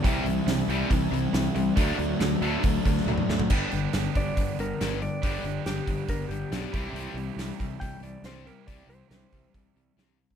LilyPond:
<<
  \new Staff \with { instrumentName = "Electric slide guitar" } { \time 4/4 \key g \major \tempo 4 = 139 r1 | r1 | r4. d''4 bes'4 d''8~ | d''4 g'4 bes'8 g'4.~ |
g'4. r8 g''8 d''8 c''8 bes'8 | d''8 c''8 c''4 r2 | }
  \new Staff \with { instrumentName = "Overdriven electric guitar" } { \clef bass \time 4/4 \key g \major <c g c' e'>2 <c g c' e'>2 | <d fis a d'>2 <d fis a d'>2 | r1 | r1 |
r1 | r1 | }
  \new Staff \with { instrumentName = "Overdriven electric guitar" } { \clef bass \time 4/4 \key g \major <c e g>8 <c e>8 <c e>8 <c e g>8 <c e>8 <c e>8 <c e>8 <c e>8 | <d a d'>8 <d a>8 <d a>8 <d a d'>8 <d a>8 <d a>8 <d a>8 <d a>8 | <g b d' g'>1 | <g b d' g'>2.~ <g b d' g'>8 <c e g e' g'>8~ |
<c e g e' g'>2.~ <c e g e' g'>8 <c e g e' g'>8~ | <c e g e' g'>2.~ <c e g e' g'>8 r8 | }
  \new Staff \with { instrumentName = "Distorted electric guitar" } { \clef bass \time 4/4 \key g \major <c g c'>8 <c g>8 <c g>8 <c g c'>8 <c g>8 <c g>8 <c g>8 <c g>8 | <d fis a>8 <d fis>8 <d fis>8 <d fis a>8 <d fis>8 <d fis>8 <d fis>8 <d fis>8 | <g, d g>8 <g, d>8 <g, d>8 <g, d>8 <g, d>8 <g, d>8 <g, d g>8 <g, d>8 | <g, d g>8 <g, d>8 <g, d>8 <g, d>8 <g, d>8 <g, d>8 <g, d g>8 <c g c'>8 |
<c g c'>8 <c g>8 <c g>8 <c g>8 <c g>8 <c g>8 <c g c'>8 <c g>8 | <c g c'>8 <c g>8 <c g>8 <c g>8 <c g>8 <c g>8 <c g c'>8 <c g>8 | }
  \new Staff \with { instrumentName = "Fingered electric bass" } { \clef bass \time 4/4 \key g \major c,8 c,8 c,8 c,8 c,8 c,8 c,8 c,8 | d,8 d,8 d,8 d,8 d,8 d,8 d,8 d,8 | g,,8 g,,8 g,,8 g,,8 g,,8 g,,8 g,,4 | g,,8 g,,8 g,,8 g,,8 g,,8 g,,8 b,,8 c,8 |
c,8 c,8 c,8 c,8 c,8 c,8 c,4 | c,8 c,8 c,8 c,8 c,8 c,8 c,4 | }
  \new DrumStaff \with { instrumentName = "Drums" } \drummode { \time 4/4 <hho bd>8 hho8 <hho sn>8 hho8 <hho bd>8 hho8 <hho sn>8 hho8 | <hho bd>8 hho8 <hho sn>8 hho8 <hho bd>8 <hho bd>16 sn16 tommh16 toml16 sn16 tomfh16 | <cymc bd>8 hho8 <hho sn>8 <hho bd>8 <hho bd>8 hho8 <hho sn>8 hho8 | <hho bd>8 hho8 <hho sn>8 <hho bd>8 <hho bd>8 hho8 <hho sn>8 <hho bd>8 |
hho8 hho8 <hho sn>8 <hho bd>8 <hho bd>8 hho8 <hho sn>8 hho8 | <hho bd>8 hho8 <hho sn>8 <hho bd>8 <hho bd>8 hho8 <hho sn>8 hho16 bd16 | }
>>